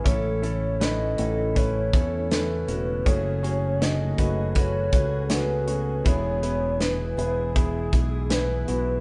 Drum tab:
HH |xxxxxxxx|xxxxxxxx|xxxxxxxx|
SD |--o---o-|--o---o-|--o---o-|
BD |o---oo--|o--ooo--|o---oo--|